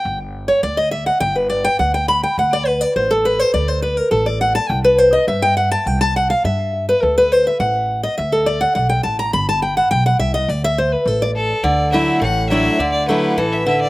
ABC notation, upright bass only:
X:1
M:4/4
L:1/8
Q:1/4=207
K:Dmix
V:1 name="Upright bass" clef=bass
G,,,4 D,,4 | G,,,4 D,,4 | D,,4 A,,,4 | D,,4 A,,,4 |
C,,4 G,,4 | C,,4 G,,4 | D,,4 A,,,4 | D,,4 B,,,2 A,,,2 |
G,,,4 B,,,2 C,,2 | D,,4 A,,,4 | D,,4 A,,,4 | D,,4 A,,,4 |]